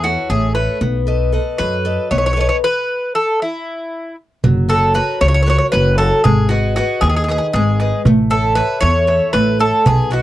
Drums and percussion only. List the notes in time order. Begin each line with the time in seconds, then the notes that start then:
4.44 darbuka dum
4.57 darbuka tek
4.70 darbuka tek
4.96 darbuka tek
5.21 darbuka tek
5.48 darbuka tek
5.73 darbuka tek
5.99 darbuka tek
6.25 darbuka dum
6.38 darbuka tek
6.51 darbuka tek
6.64 darbuka tek
6.77 darbuka tek
7.03 darbuka tek
7.29 darbuka tek
7.54 darbuka tek
7.80 darbuka tek
8.06 darbuka dum
8.18 darbuka tek
8.31 darbuka tek
8.45 darbuka tek
8.57 darbuka tek
8.83 darbuka tek
9.08 darbuka tek
9.34 darbuka tek
9.61 darbuka tek
9.86 darbuka dum
10.12 darbuka tek